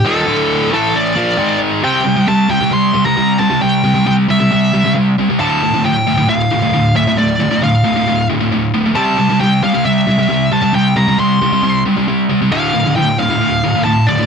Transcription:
<<
  \new Staff \with { instrumentName = "Lead electric guitar" } { \time 4/4 \key c \mixolydian \tempo 4 = 135 a'4. a'8 d''4. r8 | g''4 a''8 g''8 c'''8. bes''8. a''8 | g''4 g''8 e''4. r4 | a''4 g''4 f''4. e''8 |
d''4 f''4. r4. | a''4 g''8 f''8 e''4. a''8 | g''8 bes''8 c'''4. r4. | f''4 g''8 f''4. a''8 d''8 | }
  \new Staff \with { instrumentName = "Distorted electric guitar" } { \clef bass \time 4/4 \key c \mixolydian <ees, bes, ees>8 <d, a, d>4 <a, e a>4 <bes, f bes>8 <gis, dis gis>4 | <c g c'>8 <c g>16 <c g>16 <c g>8 <c g>16 <c g>16 <c g>8 <c g>16 <c g>16 <c g>8 <c g>16 <c g>16 | <c g>8 <c g>16 <c g>16 <c g>8 <c g>16 <c g>16 <c g>8 <c g>16 <c g>16 <c g>8 <c g>16 <c g>16 | <d, a, d>8 <d, a,>16 <d, a,>16 <d, a,>8 <d, a,>16 <d, a,>16 <d, a,>8 <d, a,>16 <d, a,>16 <d, a,>8 <d, a,>16 <d, a,>16 |
<d, a,>8 <d, a,>16 <d, a,>16 <d, a,>8 <d, a,>16 <d, a,>16 <d, a,>8 <d, a,>16 <d, a,>16 <d, a,>8 <d, a,>16 <d, a,>16 | <c g c'>8 <c g>16 <c g>16 <c g>8 <c g>16 <c g>16 <c g>8 <c g>16 <c g>16 <c g>8 <c g>16 <c g>16 | <c g>8 <c g>16 <c g>16 <c g>8 <c g>16 <c g>16 <c g>8 <c g>16 <c g>16 <c g>8 <c g>16 <c g>16 | <d, a, d>8 <d, a,>16 <d, a,>16 <d, a,>8 <d, a,>16 <d, a,>16 <d, a,>8 <d, a,>16 <d, a,>16 <d, a,>8 <d, a,>16 <d, a,>16 | }
>>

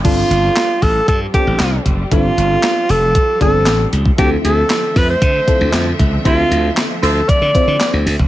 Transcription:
<<
  \new Staff \with { instrumentName = "Alto saxophone" } { \time 4/4 \key g \dorian \tempo 4 = 116 f'4. a'8 a'8 g'4 r8 | f'4. a'4 a'4 r8 | g'8 a'4 b'16 c''4.~ c''16 r8 | f'4 r8 a'8 d''4. r8 | }
  \new Staff \with { instrumentName = "Horn section" } { \time 4/4 \key g \dorian r1 | r1 | r1 | <f' a' c''>16 r4 r16 <f' a' c''>8 r2 | }
  \new Staff \with { instrumentName = "FM electric piano" } { \time 4/4 \key g \dorian <c' d' f' a'>4 r4. <b c' d' f' a'>4 r8 | <b c' d' f' a'>4 r4. <b c' d' f' a'>4 r8 | <c' e' f' a'>4 r4. <c' e' f' a'>4 r8 | <c' f' g' a' e''>4 r4. <c' e' f' c''>4 r8 | }
  \new Staff \with { instrumentName = "String section" } { \time 4/4 \key g \dorian << { <g c'>1~ | <g c'>1 | <d a c' e''>1~ | <d a c' e''>1 | } \\ { f1~ | f1~ | f1~ | f1 | } >> }
  \new Staff \with { instrumentName = "Slap bass" } { \clef bass \time 4/4 \key g \dorian g,,8 g,,8 r8 a,,8 g,8 r16 a,,16 c,8 fis,,8 | g,,8 g,,8 r8 f,,8. r16 g,,8 a,,8 cis,8 | d,8 d,8 r8 f,8 d8 r16 d,16 f,8 cis,8 | d,8 d,8 r8 d,8 r16 d16 r16 d16 r16 d,16 d,16 fis,,16 | }
  \new DrumStaff \with { instrumentName = "Drums" } \drummode { \time 4/4 <cymc hh bd>8 hh8 <hc hh sn>8 <hho bd>8 <hh bd>8 <hh bd>8 <hc hh sn>8 <hh bd>8 | <hh bd>8 hh8 <hc hh sn>8 hho8 <hh bd>8 <hh bd>8 <hc hh sn>8 hh16 bd16 | <hh bd>8 hh8 <hc hh sn>8 <hho bd>8 <hh bd>8 <hh bd>8 <hc hh sn>8 <hh bd>8 | <hh bd>8 hh8 <hc hh sn>8 hho8 <hh bd>8 <hh bd>8 <hc hh sn>8 hho16 bd16 | }
>>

